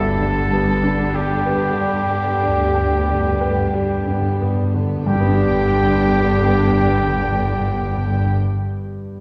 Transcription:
0.00 0.95 G1 medium
0.00 0.94 G2 medium
0.00 5.03 G2 medium
0.00 0.09 G2 soft
0.00 4.80 D3 medium
0.00 0.21 G3 soft
0.00 4.76 G3 medium
0.00 1.13 B3 soft
0.00 4.81 D4 soft
0.00 1.14 G4 soft
0.00 1.13 A4 medium
0.00 1.17 A4 medium
0.00 1.16 A5 medium
0.20 0.71 D3 soft
0.20 0.53 B3 soft
0.41 0.49 G2 soft
0.53 0.84 G3 soft
0.53 1.03 B3 soft
0.61 0.70 G2 soft
0.82 0.90 G2 soft
0.82 1.16 B3 soft
0.82 1.34 D4 soft
1.02 1.11 G2 soft
1.12 1.22 G2 soft
1.12 1.47 G3 soft
1.12 4.59 B3 medium
1.12 1.65 G4 soft
1.12 4.42 G4 soft
1.12 4.59 G4 medium
1.12 4.43 G4 medium
1.12 4.42 G5 soft
1.23 1.31 G2 soft
1.32 1.42 G2 soft
1.43 1.51 G2 soft
1.43 1.79 B3 soft
1.43 1.98 B4 soft
1.52 1.62 G2 soft
1.63 1.72 G2 soft
1.73 1.81 G2 soft
1.77 2.11 G3 soft
1.77 2.30 D5 soft
1.83 1.92 G2 soft
1.93 2.03 G2 soft
2.04 2.14 G2 soft
2.10 2.43 B3 soft
2.10 2.63 G5 soft
2.15 2.24 G2 soft
2.25 2.34 G2 soft
2.35 2.45 G2 soft
2.43 3.53 D2 soft
2.43 3.53 D2 medium
2.43 2.73 G3 soft
2.43 2.96 D5 soft
2.47 2.56 G2 soft
2.58 2.67 G2 soft
2.69 2.79 G2 soft
2.74 3.08 B3 soft
2.74 3.28 G5 soft
2.80 2.89 G2 soft
2.90 3.00 G2 soft
3.01 3.10 G2 medium
3.08 3.22 G2 medium
3.08 3.43 G3 soft
3.08 3.62 D5 soft
3.23 3.32 G2 medium
3.34 3.43 G2 medium
3.41 3.76 B3 soft
3.41 3.94 B4 soft
3.45 3.54 G2 medium
3.56 3.65 G2 medium
3.67 3.75 G2 medium
3.74 3.85 G2 medium
3.74 4.09 G3 soft
3.74 4.28 G4 soft
3.87 3.96 G2 medium
3.97 4.07 G2 medium
4.07 4.18 G2 medium
4.07 4.42 B3 soft
4.07 4.62 D4 soft
4.19 4.29 G2 medium
4.30 4.40 G2 medium
4.41 4.52 G2 medium
4.41 4.76 G3 soft
4.41 4.94 B3 soft
4.53 4.62 G2 medium
4.63 4.73 G2 medium
4.74 4.84 G2 medium
4.74 5.07 D3 soft
4.74 5.08 B3 soft
4.85 4.94 G2 medium
4.96 5.05 G2 medium
5.06 8.32 G1 medium
5.06 8.31 G2 soft
5.06 8.31 G2 medium
5.06 5.14 G2 medium
5.06 8.31 D3 medium
5.06 8.31 B3 medium
5.06 8.33 B3 medium
5.06 8.32 D4 medium
5.06 8.32 G4 medium
5.06 8.33 G4 medium
5.06 8.31 G5 medium
5.06 8.32 G5 medium
5.13 5.22 G2 medium
5.13 8.38 G3 soft
5.20 5.29 G2 medium
5.20 8.45 B3 soft
5.27 5.36 G2 soft
5.27 8.52 D4 soft
5.34 5.43 G2 medium
5.34 8.59 G4 soft
5.41 8.66 D5 soft
5.51 5.59 G2 medium
5.59 5.67 G2 medium
5.67 5.73 G2 medium
5.73 5.80 G2 medium
5.80 5.88 G2 medium
5.88 5.95 G2 medium
5.95 6.03 G2 medium
6.03 6.10 G2 soft
6.10 6.17 G2 medium
6.17 6.24 G2 medium
6.24 6.32 G2 medium
6.32 6.39 G2 medium
6.40 6.47 G2 medium
6.47 6.55 G2 medium
6.64 6.71 G2 medium
6.71 6.78 G2 medium
6.79 6.86 G2 medium
6.86 6.93 G2 medium
6.93 7.00 G2 medium
7.00 7.07 G2 soft
7.07 7.14 G2 medium
7.15 7.22 G2 medium
7.23 7.30 G2 medium
7.30 7.37 G2 medium
7.37 7.44 G2 soft
7.44 7.52 G2 medium
7.52 7.59 G2 medium
7.59 7.66 G2 medium
7.66 7.74 G2 medium
7.74 7.81 G2 medium
7.82 7.89 G2 medium
7.89 7.96 G2 medium
7.96 8.03 G2 medium
8.03 8.10 G2 medium
8.10 8.18 G2 medium
8.18 8.26 G2 medium
8.26 8.33 G2 soft

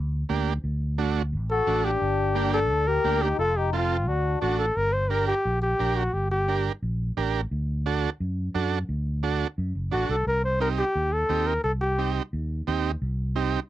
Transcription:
0.00 0.23 D2 medium
0.29 0.57 D2 medium
0.29 0.53 A#3 medium
0.29 0.54 D4 medium
0.29 0.54 G4 medium
0.64 1.34 D2 medium
0.98 1.22 A3 medium
0.98 1.22 D4 medium
0.98 1.23 F#4 medium
1.33 1.60 A1 medium
1.50 1.82 F#4 medium
1.50 1.86 A4 loud
1.67 1.95 A1 medium
1.67 1.91 A3 medium
1.67 1.91 D4 medium
1.67 1.91 F#4 medium
1.85 2.52 D4 medium
1.85 2.53 G4 medium
2.02 2.70 G1 medium
2.35 2.59 A#3 medium
2.35 2.60 D4 medium
2.35 2.60 G4 loud
2.53 2.85 D4 medium
2.53 2.89 A4 loud
2.70 2.98 D2 medium
2.87 3.22 G4 medium
2.87 3.23 A#4 loud
3.04 3.32 D2 medium
3.04 3.28 A#3 medium
3.04 3.28 D4 medium
3.04 3.29 G4 medium
3.21 3.39 D#4 medium
3.21 3.38 G4 medium
3.39 4.08 F1 medium
3.39 3.55 F4 medium
3.39 3.58 A4 loud
3.56 3.73 D#4 medium
3.56 3.73 G4 medium
3.73 3.97 C4 medium
3.73 4.05 C4 medium
3.73 4.09 F4 medium
3.73 3.97 F4 medium
3.73 3.97 A4 medium
4.07 4.35 D2 medium
4.07 4.59 D4 medium
4.07 4.41 F#4 medium
4.41 4.70 A1 medium
4.41 4.66 D4 medium
4.41 4.58 F#4 medium
4.41 4.66 F#4 medium
4.41 4.66 A4 medium
4.59 4.78 A4 medium
4.77 5.32 G1 medium
4.77 4.94 A#4 medium
4.93 5.11 C5 medium
5.10 5.34 D4 medium
5.10 5.35 G4 medium
5.10 5.27 A#4 medium
5.10 5.35 A#4 medium
5.27 5.60 G4 medium
5.45 5.73 A#1 medium
5.62 5.98 G4 medium
5.79 6.07 A#1 medium
5.79 6.03 D4 medium
5.79 6.04 G4 medium
5.79 6.04 A#4 medium
5.96 6.15 F#4 medium
6.13 6.69 G1 medium
6.13 6.31 G4 medium
6.31 6.63 G4 medium
6.48 6.72 D4 medium
6.48 6.72 G4 medium
6.48 6.73 A#4 medium
6.83 7.10 A#1 medium
7.17 7.45 A1 medium
7.17 7.41 D4 medium
7.17 7.41 G4 medium
7.17 7.41 A#4 medium
7.51 8.06 D2 medium
7.86 8.10 D4 medium
7.86 8.10 F#4 medium
7.86 8.10 A4 loud
8.20 8.48 F#2 medium
8.55 8.82 F#2 medium
8.55 8.79 D4 medium
8.55 8.79 F#4 medium
8.55 8.79 A4 medium
8.89 9.44 D2 medium
9.23 9.47 D4 medium
9.23 9.47 F#4 medium
9.23 9.48 A4 medium
9.58 9.72 F#2 medium
9.75 9.91 F#1 medium
9.91 10.08 A1 medium
9.91 10.16 D4 medium
9.91 10.16 F#4 medium
9.91 10.09 F#4 medium
9.91 10.16 A4 medium
10.09 10.25 C2 medium
10.09 10.26 A4 medium
10.27 10.82 C2 medium
10.27 10.43 A#4 loud
10.45 10.60 C5 medium
10.60 10.85 C4 medium
10.60 10.85 D#4 medium
10.60 10.85 G4 medium
10.60 10.69 A#4 medium
10.78 11.14 G4 medium
10.96 11.23 D#2 medium
11.13 11.48 A4 medium
11.29 11.57 D#2 medium
11.29 11.53 C4 medium
11.29 11.54 D#4 medium
11.29 11.54 G4 medium
11.47 11.63 A#4 medium
11.64 12.19 C2 medium
11.64 11.71 A4 medium
11.81 12.13 G4 medium
11.98 12.22 C4 medium
11.98 12.23 D#4 medium
11.98 12.23 G4 medium
12.33 12.60 D#2 medium
12.67 12.95 D#2 medium
12.67 12.91 C4 medium
12.67 12.91 D#4 medium
12.67 12.92 G4 medium
13.02 13.57 C2 medium
13.36 13.60 C4 medium
13.36 13.60 D#4 medium
13.36 13.60 G4 medium

